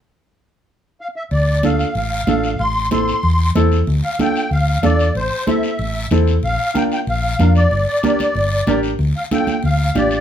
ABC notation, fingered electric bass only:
X:1
M:4/4
L:1/8
Q:1/4=188
K:Dm
V:1 name="Fingered electric bass" clef=bass
z8 | D,,4 A,,,2 A,,,2 | A,,,4 E,,2 E,,2 | D,, z3 D,,2 E,,2 |
A,,, z3 A,,,2 E,,2 | B,,, z3 B,,,2 F,,2 | G,,, z3 G,,,2 A,,,2 | D,, z3 D,,2 A,,,2 |]